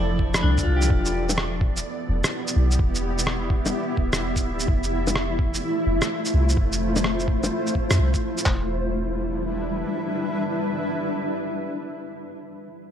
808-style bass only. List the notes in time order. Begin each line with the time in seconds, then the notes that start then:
Already playing: F1
0.44 C2
0.67 C2
0.90 E1
2.09 E1
2.56 B1
2.79 E1
3.98 D1
4.13 E1
4.45 D1
4.68 F1
5.87 F1
6.34 C2
6.57 F1
7.91 F2
7.99 C2
8.46 E1